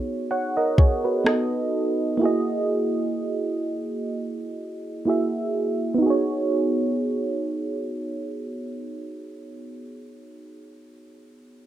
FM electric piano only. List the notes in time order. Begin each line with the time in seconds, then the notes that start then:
Already playing: B3 D#4 F#4 G#4 C#5
0.31 C#5 F#5
0.57 A#4 D#5
0.79 G#4 C#5
1.04 F#4 B4
1.24 B3 D#4 F#4 A4 D#5
2.17 A#3 E4
2.22 F#4 G#4 D#5
5.05 A#3 E4 F#4 G#4
5.10 E5
5.94 B3 D#4
6.02 F#4
6.06 G#4 C#5